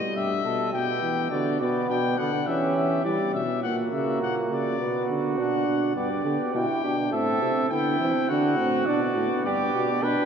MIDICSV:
0, 0, Header, 1, 5, 480
1, 0, Start_track
1, 0, Tempo, 580271
1, 1085, Time_signature, 4, 2, 24, 8
1, 8481, End_track
2, 0, Start_track
2, 0, Title_t, "Trumpet"
2, 0, Program_c, 0, 56
2, 0, Note_on_c, 0, 75, 97
2, 114, Note_off_c, 0, 75, 0
2, 133, Note_on_c, 0, 76, 92
2, 596, Note_off_c, 0, 76, 0
2, 601, Note_on_c, 0, 79, 87
2, 1071, Note_off_c, 0, 79, 0
2, 1082, Note_on_c, 0, 74, 76
2, 1319, Note_off_c, 0, 74, 0
2, 1331, Note_on_c, 0, 74, 71
2, 1561, Note_off_c, 0, 74, 0
2, 1566, Note_on_c, 0, 79, 75
2, 1803, Note_on_c, 0, 78, 75
2, 1815, Note_off_c, 0, 79, 0
2, 2040, Note_on_c, 0, 76, 70
2, 2053, Note_off_c, 0, 78, 0
2, 2276, Note_off_c, 0, 76, 0
2, 2281, Note_on_c, 0, 76, 67
2, 2515, Note_off_c, 0, 76, 0
2, 2520, Note_on_c, 0, 74, 78
2, 2757, Note_off_c, 0, 74, 0
2, 2761, Note_on_c, 0, 76, 68
2, 2999, Note_off_c, 0, 76, 0
2, 3002, Note_on_c, 0, 78, 70
2, 3112, Note_off_c, 0, 78, 0
2, 3253, Note_on_c, 0, 76, 62
2, 3486, Note_off_c, 0, 76, 0
2, 3491, Note_on_c, 0, 78, 69
2, 3598, Note_off_c, 0, 78, 0
2, 3737, Note_on_c, 0, 74, 75
2, 4214, Note_off_c, 0, 74, 0
2, 4448, Note_on_c, 0, 78, 68
2, 4897, Note_off_c, 0, 78, 0
2, 4930, Note_on_c, 0, 74, 69
2, 5379, Note_off_c, 0, 74, 0
2, 5411, Note_on_c, 0, 79, 73
2, 5885, Note_off_c, 0, 79, 0
2, 5891, Note_on_c, 0, 76, 77
2, 6357, Note_off_c, 0, 76, 0
2, 6362, Note_on_c, 0, 79, 80
2, 6851, Note_on_c, 0, 78, 78
2, 6863, Note_off_c, 0, 79, 0
2, 7329, Note_on_c, 0, 74, 80
2, 7341, Note_off_c, 0, 78, 0
2, 7808, Note_off_c, 0, 74, 0
2, 7813, Note_on_c, 0, 74, 78
2, 8288, Note_on_c, 0, 79, 86
2, 8300, Note_off_c, 0, 74, 0
2, 8481, Note_off_c, 0, 79, 0
2, 8481, End_track
3, 0, Start_track
3, 0, Title_t, "Flugelhorn"
3, 0, Program_c, 1, 56
3, 0, Note_on_c, 1, 66, 70
3, 117, Note_off_c, 1, 66, 0
3, 138, Note_on_c, 1, 67, 73
3, 244, Note_off_c, 1, 67, 0
3, 370, Note_on_c, 1, 69, 77
3, 597, Note_off_c, 1, 69, 0
3, 602, Note_on_c, 1, 67, 67
3, 1083, Note_on_c, 1, 66, 74
3, 1095, Note_off_c, 1, 67, 0
3, 1563, Note_on_c, 1, 62, 76
3, 1575, Note_off_c, 1, 66, 0
3, 2044, Note_off_c, 1, 62, 0
3, 2051, Note_on_c, 1, 67, 82
3, 2761, Note_off_c, 1, 67, 0
3, 3008, Note_on_c, 1, 66, 75
3, 3939, Note_off_c, 1, 66, 0
3, 3958, Note_on_c, 1, 66, 72
3, 4905, Note_off_c, 1, 66, 0
3, 4929, Note_on_c, 1, 67, 63
3, 5154, Note_off_c, 1, 67, 0
3, 5169, Note_on_c, 1, 67, 79
3, 5644, Note_off_c, 1, 67, 0
3, 5650, Note_on_c, 1, 67, 77
3, 5760, Note_off_c, 1, 67, 0
3, 5892, Note_on_c, 1, 69, 90
3, 6365, Note_off_c, 1, 69, 0
3, 6380, Note_on_c, 1, 64, 84
3, 6859, Note_on_c, 1, 66, 93
3, 6872, Note_off_c, 1, 64, 0
3, 7816, Note_off_c, 1, 66, 0
3, 7821, Note_on_c, 1, 67, 105
3, 8299, Note_on_c, 1, 71, 96
3, 8312, Note_off_c, 1, 67, 0
3, 8481, Note_off_c, 1, 71, 0
3, 8481, End_track
4, 0, Start_track
4, 0, Title_t, "Trombone"
4, 0, Program_c, 2, 57
4, 0, Note_on_c, 2, 55, 73
4, 597, Note_off_c, 2, 55, 0
4, 620, Note_on_c, 2, 59, 71
4, 1081, Note_off_c, 2, 59, 0
4, 1091, Note_on_c, 2, 59, 66
4, 1324, Note_off_c, 2, 59, 0
4, 1333, Note_on_c, 2, 59, 89
4, 1801, Note_off_c, 2, 59, 0
4, 1811, Note_on_c, 2, 59, 83
4, 1917, Note_off_c, 2, 59, 0
4, 2043, Note_on_c, 2, 61, 90
4, 2513, Note_off_c, 2, 61, 0
4, 2519, Note_on_c, 2, 55, 83
4, 2827, Note_off_c, 2, 55, 0
4, 3002, Note_on_c, 2, 58, 86
4, 3936, Note_off_c, 2, 58, 0
4, 3975, Note_on_c, 2, 59, 84
4, 4453, Note_on_c, 2, 62, 84
4, 4465, Note_off_c, 2, 59, 0
4, 4922, Note_off_c, 2, 62, 0
4, 4927, Note_on_c, 2, 59, 70
4, 5036, Note_off_c, 2, 59, 0
4, 5177, Note_on_c, 2, 59, 72
4, 5409, Note_on_c, 2, 64, 74
4, 5422, Note_off_c, 2, 59, 0
4, 5654, Note_on_c, 2, 62, 78
4, 5667, Note_off_c, 2, 64, 0
4, 5897, Note_on_c, 2, 60, 72
4, 5910, Note_off_c, 2, 62, 0
4, 6126, Note_off_c, 2, 60, 0
4, 6131, Note_on_c, 2, 60, 78
4, 6369, Note_off_c, 2, 60, 0
4, 6377, Note_on_c, 2, 59, 73
4, 6611, Note_off_c, 2, 59, 0
4, 6616, Note_on_c, 2, 60, 75
4, 6851, Note_off_c, 2, 60, 0
4, 6867, Note_on_c, 2, 62, 77
4, 7087, Note_off_c, 2, 62, 0
4, 7092, Note_on_c, 2, 60, 78
4, 7330, Note_off_c, 2, 60, 0
4, 7341, Note_on_c, 2, 62, 80
4, 7448, Note_off_c, 2, 62, 0
4, 7571, Note_on_c, 2, 59, 76
4, 8278, Note_off_c, 2, 59, 0
4, 8289, Note_on_c, 2, 62, 86
4, 8481, Note_off_c, 2, 62, 0
4, 8481, End_track
5, 0, Start_track
5, 0, Title_t, "Bass trombone"
5, 0, Program_c, 3, 57
5, 134, Note_on_c, 3, 43, 61
5, 366, Note_off_c, 3, 43, 0
5, 371, Note_on_c, 3, 47, 63
5, 604, Note_off_c, 3, 47, 0
5, 610, Note_on_c, 3, 47, 76
5, 842, Note_off_c, 3, 47, 0
5, 848, Note_on_c, 3, 52, 66
5, 1081, Note_off_c, 3, 52, 0
5, 1085, Note_on_c, 3, 50, 76
5, 1330, Note_on_c, 3, 47, 70
5, 1342, Note_off_c, 3, 50, 0
5, 1568, Note_off_c, 3, 47, 0
5, 1572, Note_on_c, 3, 47, 84
5, 1801, Note_off_c, 3, 47, 0
5, 1806, Note_on_c, 3, 50, 72
5, 2040, Note_off_c, 3, 50, 0
5, 2048, Note_on_c, 3, 52, 67
5, 2515, Note_off_c, 3, 52, 0
5, 2519, Note_on_c, 3, 52, 63
5, 2628, Note_off_c, 3, 52, 0
5, 2763, Note_on_c, 3, 47, 66
5, 3003, Note_on_c, 3, 46, 66
5, 3015, Note_off_c, 3, 47, 0
5, 3237, Note_off_c, 3, 46, 0
5, 3242, Note_on_c, 3, 49, 68
5, 3486, Note_on_c, 3, 46, 67
5, 3498, Note_off_c, 3, 49, 0
5, 3724, Note_off_c, 3, 46, 0
5, 3729, Note_on_c, 3, 49, 66
5, 3968, Note_on_c, 3, 47, 59
5, 3981, Note_off_c, 3, 49, 0
5, 4207, Note_off_c, 3, 47, 0
5, 4212, Note_on_c, 3, 50, 65
5, 4446, Note_off_c, 3, 50, 0
5, 4450, Note_on_c, 3, 47, 65
5, 4685, Note_off_c, 3, 47, 0
5, 4694, Note_on_c, 3, 47, 58
5, 4924, Note_off_c, 3, 47, 0
5, 4929, Note_on_c, 3, 43, 73
5, 5154, Note_off_c, 3, 43, 0
5, 5169, Note_on_c, 3, 50, 74
5, 5278, Note_off_c, 3, 50, 0
5, 5412, Note_on_c, 3, 47, 81
5, 5521, Note_off_c, 3, 47, 0
5, 5657, Note_on_c, 3, 47, 72
5, 5892, Note_off_c, 3, 47, 0
5, 5898, Note_on_c, 3, 45, 72
5, 6128, Note_off_c, 3, 45, 0
5, 6133, Note_on_c, 3, 48, 74
5, 6242, Note_off_c, 3, 48, 0
5, 6372, Note_on_c, 3, 50, 71
5, 6608, Note_off_c, 3, 50, 0
5, 6613, Note_on_c, 3, 52, 75
5, 6722, Note_off_c, 3, 52, 0
5, 6854, Note_on_c, 3, 50, 69
5, 7093, Note_on_c, 3, 45, 70
5, 7105, Note_off_c, 3, 50, 0
5, 7331, Note_off_c, 3, 45, 0
5, 7336, Note_on_c, 3, 47, 76
5, 7569, Note_off_c, 3, 47, 0
5, 7574, Note_on_c, 3, 45, 74
5, 7682, Note_off_c, 3, 45, 0
5, 7812, Note_on_c, 3, 43, 72
5, 8048, Note_off_c, 3, 43, 0
5, 8052, Note_on_c, 3, 47, 75
5, 8286, Note_off_c, 3, 47, 0
5, 8291, Note_on_c, 3, 47, 80
5, 8400, Note_off_c, 3, 47, 0
5, 8481, End_track
0, 0, End_of_file